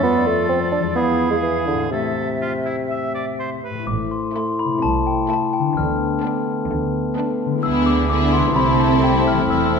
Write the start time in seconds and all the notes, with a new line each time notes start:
Already playing: F2 A3 F4 A4
0.00 B3 F4 D5
0.04 D5
0.26 A3
0.49 C4
0.72 D4
0.78 E2
0.83 G#3
0.87 F4
0.92 B3 D5
0.96 E4 G#4 F5
1.31 G#3
1.42 E3
1.67 D3
1.74 A2
1.78 A3
1.83 E4
1.87 C3 C5
1.92 A3 A4 E5
2.41 F4
2.65 E4
2.90 E5
3.15 D5
3.40 C5
3.64 B4
3.70 A2
3.75 A3
3.79 E4
3.84 C5 D6
3.88 A1 A2 A3 E4
4.11 C6
4.35 A3 E4 A4 C6
4.59 B5
4.65 C3
4.69 A3
4.74 E4
4.78 C2 C3 C5
4.82 A5
5.07 G5
5.29 A3 E4 A4 A5
5.53 G5
5.59 D3
5.63 A3
5.68 D4
5.72 B4
5.76 D2 D3 B3 F6
6.23 B3 D4 A4
6.70 D2 D3
7.16 B3 D4 A4
7.46 D3
7.50 G#3
7.55 E4
7.59 D2 D3 B4 E6
7.63 G#3 B3 E4 G#4
7.86 D6
8.09 B3 E4 G#4 D6
8.33 C6
8.39 C3
8.43 A3
8.48 E4
8.52 C2 C4 E4 A4 C5 B5
8.56 C3 A3 C4
8.80 A5
9.04 G5
9.28 F6
9.33 E3
9.37 A3
9.42 E4
9.46 C5
9.50 E1 E2 C4 E4 A4 E6
9.58 F6
9.66 E6